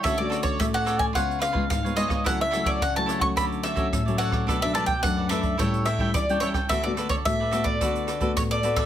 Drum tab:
HH |x-xxx-xxxxx-xxxx|x-xxx-x-xxxxxxx-|x-xxx-xxxxx-xxxx|x-xxx-x-xxxxxxx-|
SD |r-r-r-r-r-r-r--r|r-r-r-r-r-r-r--r|r-r-r-r-r-r-r--r|r-r-r-r-r-r-r--r|
BD |o--oo--oo--oo--o|o--oo--oo--oo--o|o--oo--oo--oo--o|o--oo--oo--oo--o|